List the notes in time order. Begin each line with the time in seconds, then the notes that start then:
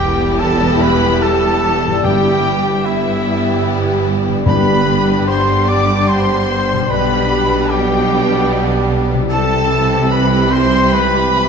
Already playing: E1 E2 E3 G3 B3 E4 G4 B4 G5
0.39 A4 A5
0.81 B4 B5
1.21 A4 A5
1.86 G2
1.91 G3
1.95 E4
1.99 G3 B3 E4 B4 G5
2.04 G1 G2 E3 G3 B3 G4 G5
2.84 E3 G3 B3 E4 G4 E5
4.28 G2
4.33 G3
4.38 D4 G4
4.45 G2 D3 G3 B3 D4 G4 B4 B5
5.27 C5 C6
5.68 D5 D6
6.07 C5 C6
6.72 B2
6.77 G3
6.82 D4
6.86 B1 B2 D3 G3 D4 G4 B4 B5
6.90 G3 B3 B4 B5
7.70 D3 G3 B3 D4 G4 G5
9.13 C3
9.18 G3
9.22 E4
9.27 C2 C3 E3 G3 C4 E4 G4 A4 A5
9.32 A5
10.10 B4 B5
10.51 C5 C6
10.92 B4 B5